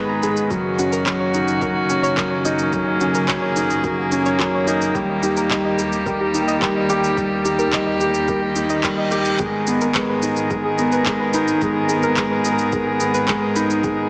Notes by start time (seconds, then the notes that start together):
Already playing: G#1 D#3 G#3 B3 D#4 G#4 B4
0.09 A#5
0.23 G#3 G#4, shaker
0.37 shaker
0.50 F#1 F#3 A#3 C#4 F#4, kick, shaker
0.79 C#4 F#4, shaker
0.92 A#4, shaker
1.06 F#3 C#5, kick, clap, shaker
1.20 C#5
1.34 D#4, shaker
1.48 shaker
1.62 F#3 A#4, kick, shaker
1.76 F#4
1.90 C#4, shaker
2.03 C#5, shaker
2.17 F#3 A#4, kick, clap, shaker
2.31 C#5
2.45 D#4 D#5, shaker
2.59 shaker
2.73 F#3 G#4, kick, shaker
3.01 C#4 F#4, shaker
3.14 A#4, shaker
3.28 F#3 C#5, kick, clap, shaker
3.42 C#5
3.56 D#4, shaker
3.70 shaker
3.84 F#3 A#4, kick, shaker
3.98 F#4
4.11 C#4, shaker
4.26 C#5, shaker
4.39 F#3 A#4, kick, clap, shaker
4.54 C#5
4.67 D#4 D#5, shaker
4.81 shaker
4.95 D#2 D#3 G3 G4, kick, shaker
5.23 D#4 G4, shaker
5.37 A#4, shaker
5.50 G3 D#5, kick, clap, shaker
5.65 D#5
5.78 G4, shaker
5.93 shaker
6.06 G3 A#4, kick, shaker
6.21 G4
6.34 D#4, shaker
6.48 D#5, shaker
6.62 G3 A#4, kick, clap, shaker
6.76 D#5
6.89 G4 G5, shaker
7.04 shaker
7.17 G3, kick, shaker
7.45 D#4 G4, shaker
7.59 A#4, shaker
7.73 G3 D#5, kick, clap, shaker
7.87 D#5
8.00 G4, shaker
8.14 shaker
8.28 G3 A#4, kick, reverse cymbal, shaker
8.42 G4
8.56 D#4, shaker
8.70 D#5, shaker
8.83 G3 A#4, kick, clap, shaker
8.98 D#5
9.11 G4 G5, shaker
9.25 shaker
9.39 G#1 G#3 B3 G#4 A#4, kick, shaker
9.67 B3 G#4, shaker
9.81 A#4, shaker
9.95 G#3 B4, kick, clap, shaker
10.10 B4
10.22 D#4, shaker
10.36 shaker
10.50 G#3 A#4, kick, shaker
10.65 G#4
10.78 B3, shaker
10.92 B4, shaker
11.06 G#3 A#4, kick, clap, shaker
11.20 B4
11.33 D#4 B5, shaker
11.48 shaker
11.61 G#3, kick, shaker
11.89 B3 G#4, shaker
12.03 A#4, shaker
12.17 G#3 B4, kick, clap, shaker
12.31 B4
12.45 D#4, shaker
12.58 shaker
12.72 G#3 A#4, kick, shaker
12.87 G#4
13.00 B3, shaker
13.14 B4, shaker
13.28 G#3 A#4, kick, clap, shaker
13.42 B4
13.56 D#4 B5, shaker
13.70 shaker
13.84 G#3, kick, shaker